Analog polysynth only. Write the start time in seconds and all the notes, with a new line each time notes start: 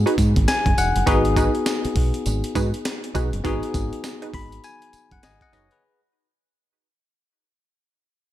0.06 D#4 F#4 G#4 B4
1.07 D#4 F#4 G#4 B4
1.37 D#4 F#4 G#4 B4
2.55 D#4 F#4 G#4 B4
3.15 D#4 F#4 G#4 B4
3.44 D#4 F#4 G#4 B4
4.22 D#4 F#4 G#4 B4
5.53 D#4 F#4 G#4 B4